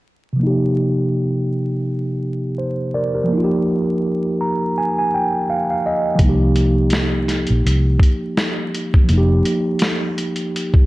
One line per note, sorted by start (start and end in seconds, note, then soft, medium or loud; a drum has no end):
0.33 2.86 C3 medium
0.33 2.88 F3 medium
0.40 2.89 A#3 medium
0.40 2.91 D#4 medium
0.47 2.57 G4 medium
2.58 2.92 C5 medium
2.94 3.13 A#4 medium
2.94 3.14 D5 medium
3.14 3.43 G4 soft
3.14 3.49 A#4 medium
3.24 6.12 F3 medium
3.28 6.14 A#3 medium
3.33 6.17 D#4 medium
3.37 3.41 F4 medium
3.44 6.22 G4 medium
4.41 4.73 A#5 medium
4.78 4.96 G#5 medium
4.98 5.11 G#5 medium
5.14 5.46 G5 medium
5.50 5.68 F5 medium
5.70 5.83 F5 medium
5.86 6.18 D#5 medium
6.15 9.02 F3 medium
6.15 kick loud
6.15 closed hi-hat medium
6.20 7.45 C2 loud
6.20 9.05 A#3 medium
6.25 9.07 D#4 medium
6.29 9.09 G4 medium
6.56 closed hi-hat medium
6.90 snare loud
6.90 closed hi-hat medium
7.28 snare soft
7.28 closed hi-hat medium
7.47 7.63 A#1 medium
7.47 closed hi-hat soft
7.65 7.96 C2 medium
7.65 closed hi-hat medium
8.00 kick medium
8.00 closed hi-hat medium
8.37 snare loud
8.37 closed hi-hat medium
8.74 closed hi-hat medium
8.94 kick medium
9.04 10.86 F3 medium
9.09 9.41 F1 loud
9.09 10.86 A#3 medium
9.09 closed hi-hat medium
9.13 10.86 D#4 medium
9.18 10.86 G4 medium
9.45 closed hi-hat medium
9.79 snare loud
9.79 closed hi-hat medium
10.18 closed hi-hat medium
10.36 closed hi-hat soft
10.56 closed hi-hat medium
10.74 kick medium